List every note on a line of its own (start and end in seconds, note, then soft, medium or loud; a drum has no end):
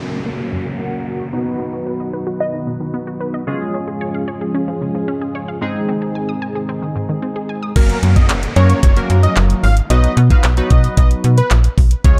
0.00 1.31 C#3 medium
0.00 3.43 F#3 medium
0.00 1.29 A#3 medium
0.00 1.31 A#3 medium
0.00 1.29 C#4 medium
0.00 1.29 F#4 medium
0.00 3.43 F#4 medium
0.00 1.29 A#4 medium
0.00 0.83 F5 medium
0.00 downlifter medium
0.12 0.20 F#4 medium
0.26 0.34 A#3 medium
0.39 0.47 C#3 medium
0.53 0.61 F#2 medium
0.66 0.74 C#3 medium
0.79 0.87 A#3 medium
0.79 2.36 F#5 loud
0.93 1.01 F#4 medium
1.06 1.14 F#5 medium
1.20 1.28 C#6 medium
1.33 1.41 B2 medium
1.33 3.45 D#3 medium
1.33 3.43 B3 medium
1.33 3.45 B3 medium
1.33 3.43 D#4 medium
1.33 3.44 F#4 medium
1.33 3.44 B4 medium
1.60 1.68 B3 medium
1.73 1.81 F#4 medium
1.87 1.95 B4 medium
2.00 2.08 D#5 medium
2.13 2.21 B4 medium
2.27 2.35 F#4 medium
2.40 2.48 B3 medium
2.40 3.17 D#5 medium
2.54 2.62 D#3 medium
2.67 2.75 B2 medium
2.80 2.88 D#3 medium
2.94 3.02 B3 medium
3.07 3.15 F#4 medium
3.21 3.29 B4 medium
3.34 3.42 D#5 medium
3.47 3.55 C#3 medium
3.47 5.60 F3 medium
3.47 5.57 G#3 medium
3.47 5.60 G#3 medium
3.47 5.58 C#4 medium
3.47 5.60 C#4 medium
3.47 5.58 F4 medium
3.47 7.72 G#4 medium
3.47 5.58 G#4 medium
3.74 3.82 C#4 medium
3.88 3.96 G#4 medium
4.01 4.09 C#5 medium
4.14 4.22 F5 medium
4.28 4.36 C#5 medium
4.41 4.49 G#4 medium
4.55 4.63 C#4 medium
4.68 4.76 F3 medium
4.81 4.89 C#3 medium
4.95 5.03 F3 medium
5.08 5.16 C#4 medium
5.21 5.29 G#4 medium
5.35 5.43 C#5 medium
5.48 5.56 F5 medium
5.61 5.70 G#2 medium
5.61 7.74 D#3 medium
5.61 7.72 G#3 medium
5.61 7.74 G#3 medium
5.61 7.72 C4 medium
5.61 7.74 C4 medium
5.61 7.72 D#4 medium
5.61 7.72 G#4 medium
5.89 5.97 C4 medium
6.02 6.10 G#4 medium
6.15 6.23 G#5 medium
6.29 6.37 D#6 medium
6.42 6.50 G#5 medium
6.55 6.63 G#4 medium
6.69 6.77 C4 medium
6.82 6.90 D#3 medium
6.96 7.04 G#2 medium
7.09 7.17 D#3 medium
7.22 7.30 C4 medium
7.36 7.44 G#4 medium
7.49 7.57 G#5 medium
7.63 7.71 D#6 medium
7.76 7.93 F#1 loud
7.76 8.37 F#3 medium
7.76 8.37 A#3 medium
7.76 8.37 C#4 medium
7.76 8.37 F#4 medium
7.76 7.99 A#4 loud
7.76 8.37 A#4 medium
7.76 kick loud
7.76 closed hi-hat loud
7.76 crash loud
7.76 downlifter medium
7.90 closed hi-hat medium
8.03 8.31 F#2 loud
8.03 closed hi-hat medium
8.16 8.27 D#5 medium
8.16 kick medium
8.16 closed hi-hat medium
8.29 8.47 F#1 loud
8.29 clap loud
8.29 closed hi-hat loud
8.43 closed hi-hat medium
8.56 8.74 F#2 loud
8.56 8.87 F#3 medium
8.56 8.87 A#3 medium
8.56 8.87 C#4 medium
8.56 8.87 F#4 medium
8.56 8.87 A#4 medium
8.56 8.79 C#5 medium
8.56 closed hi-hat medium
8.70 closed hi-hat medium
8.83 9.01 F#1 loud
8.83 8.94 C#5 medium
8.83 kick loud
8.83 closed hi-hat loud
8.96 9.68 F#3 medium
8.96 9.68 A#3 medium
8.96 9.68 C#4 medium
8.96 9.68 F#4 medium
8.96 9.68 A#4 medium
8.96 closed hi-hat soft
9.10 9.27 F#2 loud
9.10 closed hi-hat medium
9.23 9.34 D#5 medium
9.23 closed hi-hat medium
9.36 9.54 F#1 loud
9.36 clap loud
9.36 closed hi-hat medium
9.50 closed hi-hat medium
9.63 9.81 G#1 loud
9.63 9.75 F5 medium
9.63 open hi-hat medium
9.77 closed hi-hat medium
9.90 10.08 B1 loud
9.90 10.21 F#3 medium
9.90 10.21 B3 medium
9.90 10.21 D#4 medium
9.90 10.21 F#4 medium
9.90 10.21 B4 medium
9.90 10.13 D#5 loud
9.90 closed hi-hat loud
10.04 closed hi-hat medium
10.17 10.34 B2 loud
10.17 closed hi-hat medium
10.30 10.51 F#3 medium
10.30 10.51 B3 medium
10.30 10.51 D#4 medium
10.30 10.51 F#4 medium
10.30 10.51 B4 medium
10.30 10.42 F5 medium
10.30 kick loud
10.30 closed hi-hat medium
10.43 10.61 B1 loud
10.43 clap loud
10.43 closed hi-hat loud
10.57 11.39 F#3 medium
10.57 11.39 B3 medium
10.57 11.39 D#4 medium
10.57 11.39 F#4 medium
10.57 11.39 B4 medium
10.57 closed hi-hat medium
10.70 10.88 B2 loud
10.70 10.93 D#5 loud
10.70 kick loud
10.70 closed hi-hat medium
10.84 closed hi-hat medium
10.97 11.15 B1 loud
10.97 11.09 D#5 medium
10.97 kick loud
10.97 closed hi-hat loud
11.11 closed hi-hat medium
11.24 11.42 B2 loud
11.24 closed hi-hat medium
11.38 11.49 B4 medium
11.38 closed hi-hat medium
11.51 11.68 A#1 loud
11.51 clap loud
11.51 closed hi-hat medium
11.64 closed hi-hat medium
11.78 11.95 B1 medium
11.78 kick medium
11.78 open hi-hat medium
11.91 closed hi-hat medium
12.04 12.20 C#2 loud
12.04 12.20 G#3 medium
12.04 12.20 C#4 medium
12.04 12.20 F4 medium
12.04 12.20 G#4 medium
12.04 12.20 C#5 loud
12.04 12.20 C#5 medium
12.04 kick loud
12.04 closed hi-hat loud